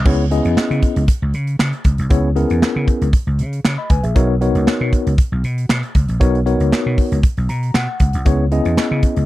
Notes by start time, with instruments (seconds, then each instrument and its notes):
0.05 slap bass C#2, tine electric piano B3 C#4 E4 G#4 C#5, kick, crash
0.31 tine electric piano B3 C#4 E4 G#4 D#5, closed hi-hat
0.45 slap bass E2, closed hi-hat
0.57 muted slap bass stroke, snare, clap
0.71 slap bass C#3, closed hi-hat
0.83 kick, closed hi-hat
0.96 slap bass C#2, closed hi-hat
1.08 kick, closed hi-hat
1.22 slap bass C#2
1.34 slap bass C#3, closed hi-hat
1.47 closed hi-hat
1.59 slap bass C#3, snare, clap
1.73 closed hi-hat
1.84 slap bass C#2, kick, closed hi-hat
1.98 slap bass C2, closed hi-hat
2.10 slap bass C#2, tine electric piano B3 C#4 E4 G#4 C#5, kick, closed hi-hat
2.35 tine electric piano B3 C#4 E4 G#4 A#4, closed hi-hat
2.50 slap bass E2, closed hi-hat
2.62 muted slap bass stroke, snare, clap
2.76 slap bass C#3
2.88 kick, closed hi-hat
3.01 slap bass C#2, closed hi-hat
3.13 kick, closed hi-hat
3.27 slap bass C#2
3.39 slap bass C#3, closed hi-hat
3.53 closed hi-hat
3.65 slap bass C#3, snare, clap
3.78 tine electric piano D#5 B5
3.90 slap bass C#2, tine electric piano B4 G#5, kick, closed hi-hat
4.03 slap bass A#1, tine electric piano G#4 E5, closed hi-hat
4.15 slap bass B1, tine electric piano B3 D#4 F#4 A#4 C#5, kick, closed hi-hat
4.41 tine electric piano B3 D#4 F#4 A#4 C#5, closed hi-hat
4.55 slap bass C#2, closed hi-hat
4.67 snare, clap
4.81 slap bass B2
4.93 kick, closed hi-hat
5.07 slap bass C#2, closed hi-hat
5.18 kick, closed hi-hat
5.32 slap bass B1
5.44 slap bass B2, closed hi-hat
5.58 closed hi-hat
5.69 slap bass B2, snare, clap
5.83 closed hi-hat
5.95 slap bass C#2, kick, closed hi-hat
6.08 slap bass A#1, closed hi-hat
6.20 slap bass B1, tine electric piano B3 D#4 F#4 A#4 C#5, kick, closed hi-hat
6.35 closed hi-hat
6.46 tine electric piano B3 D#4 F#4 A#4 C#5, closed hi-hat
6.60 slap bass C#2, closed hi-hat
6.72 muted slap bass stroke, snare, clap
6.86 slap bass B2
6.98 kick, open hi-hat
7.12 slap bass C#2, closed hi-hat
7.23 kick, closed hi-hat
7.37 slap bass B1, closed hi-hat
7.49 slap bass B2, tine electric piano A#5, closed hi-hat
7.63 closed hi-hat
7.74 slap bass B2, tine electric piano F#5, snare, clap
8.00 slap bass C#2, kick, closed hi-hat
8.13 slap bass C2, closed hi-hat
8.26 slap bass C#2, tine electric piano B3 C#4 E4 G#4 C#5, kick, closed hi-hat
8.51 tine electric piano B3 C#4 E4 G#4 D#5, closed hi-hat
8.65 slap bass E2, closed hi-hat
8.77 muted slap bass stroke, snare, clap
8.91 slap bass C#3
9.03 kick, closed hi-hat
9.16 slap bass C#2, closed hi-hat